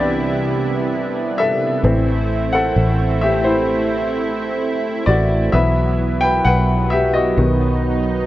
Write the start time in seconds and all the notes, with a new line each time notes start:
Already playing: C2 C3 E3 G3 B3 D4 E4 A4 D5 E5 F#5
0.00 G4
1.38 A4 E5
1.83 A1 E3 A3 C4 E4
2.52 A4 F#5
2.76 A1
3.22 G4 E5
3.44 E4 C5
5.06 A1 F#4 D5
5.52 B1 E3 F#3 B3 B4 E5
6.21 B4 G5
6.45 B1 B4 F#5
6.90 G4 E5
7.14 F#4 D#5
7.37 B1 D#3 F#3 B3 D#4